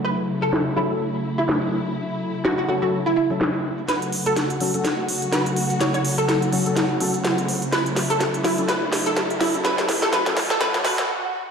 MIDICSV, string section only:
0, 0, Header, 1, 2, 480
1, 0, Start_track
1, 0, Key_signature, 3, "minor"
1, 0, Tempo, 480000
1, 46, Time_signature, 4, 2, 24, 8
1, 11509, End_track
2, 0, Start_track
2, 0, Title_t, "String section"
2, 0, Program_c, 0, 48
2, 0, Note_on_c, 0, 49, 70
2, 0, Note_on_c, 0, 54, 66
2, 0, Note_on_c, 0, 57, 64
2, 44, Note_on_c, 0, 64, 79
2, 3845, Note_off_c, 0, 49, 0
2, 3845, Note_off_c, 0, 54, 0
2, 3845, Note_off_c, 0, 57, 0
2, 3846, Note_off_c, 0, 64, 0
2, 3885, Note_on_c, 0, 54, 67
2, 3886, Note_on_c, 0, 49, 76
2, 3886, Note_on_c, 0, 57, 66
2, 3886, Note_on_c, 0, 66, 81
2, 7687, Note_off_c, 0, 66, 0
2, 7725, Note_on_c, 0, 64, 85
2, 11046, Note_off_c, 0, 49, 0
2, 11046, Note_off_c, 0, 54, 0
2, 11046, Note_off_c, 0, 57, 0
2, 11052, Note_off_c, 0, 64, 0
2, 11509, End_track
0, 0, End_of_file